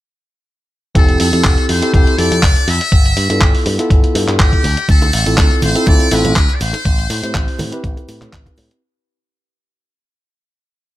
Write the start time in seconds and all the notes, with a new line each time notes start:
0.95 F1 C4 E4 G4 A4, kick, closed hi-hat
1.09 closed hi-hat
1.20 F2 A4, open hi-hat
1.32 F2 C4 E4 G4 A4, closed hi-hat
1.44 F1, kick, clap, closed hi-hat
1.58 closed hi-hat
1.69 F2 C5, open hi-hat
1.82 C4 E4 G4 A4, closed hi-hat
1.93 F1 C4 E4 G4 A4 C5, kick, closed hi-hat
2.07 closed hi-hat
2.18 F2 C4 E4 G4 A4 D5, open hi-hat
2.32 F2, closed hi-hat
2.43 F1, kick, clap, closed hi-hat
2.56 closed hi-hat
2.67 F2 E5, open hi-hat
2.81 closed hi-hat
2.92 G1, kick, closed hi-hat
3.06 closed hi-hat
3.17 G2, open hi-hat
3.30 G2 B3 E4 F4 A4, closed hi-hat
3.41 G1, kick, clap, closed hi-hat
3.55 open hi-hat
3.66 G2, open hi-hat
3.78 B3 E4 F4 A4, closed hi-hat
3.90 G1, kick, closed hi-hat
4.04 closed hi-hat
4.15 G2, open hi-hat
4.28 G2, clap, closed hi-hat
4.39 G1 G4, kick, clap, closed hi-hat
4.53 kick, closed hi-hat
4.64 D2, open hi-hat
4.77 closed hi-hat
4.89 D2 A4, kick, closed hi-hat, cabasa
5.02 closed hi-hat, high bongo, cabasa
5.12 A1 A4, open hi-hat, cabasa
5.26 A1 C4 E4 F4 A4, closed hi-hat, cabasa
5.38 D2, kick, clap, closed hi-hat, high bongo, cabasa
5.51 closed hi-hat
5.62 A1 C5, open hi-hat, high conga, cabasa
5.75 C4 E4 F4 A4, closed hi-hat, cabasa
5.86 D2 C4 E4 F4 A4 D5, kick, closed hi-hat, high bongo, cabasa
6.00 closed hi-hat, cabasa
6.11 A1 C4 E4 F4 A4 B4, open hi-hat, cabasa
6.25 A1, closed hi-hat, high bongo, low conga, cabasa
6.36 D2, kick, clap, closed hi-hat, cabasa
6.49 closed hi-hat, cabasa
6.54 D5
6.61 A1 C5, open hi-hat, cabasa
6.73 closed hi-hat, high bongo, cabasa
6.85 A1, kick, closed hi-hat, cabasa
6.99 closed hi-hat, cabasa
7.10 A2, open hi-hat, high bongo, cabasa
7.23 A2 C4 E4 G4 C5, closed hi-hat, cabasa
7.34 A1, kick, clap, closed hi-hat, cabasa
7.48 open hi-hat
7.59 A2, open hi-hat, high bongo, high conga, cabasa
7.72 C4 E4 G4 B4, closed hi-hat, cabasa
7.84 A1, kick, closed hi-hat, cabasa
7.97 closed hi-hat, high bongo, cabasa
8.08 A2, open hi-hat, cabasa
8.21 A2, clap, closed hi-hat, low conga, cabasa
8.33 A1, kick, clap, closed hi-hat, cabasa
8.46 kick, closed hi-hat, high bongo, cabasa
8.57 A2, open hi-hat, cabasa
8.71 closed hi-hat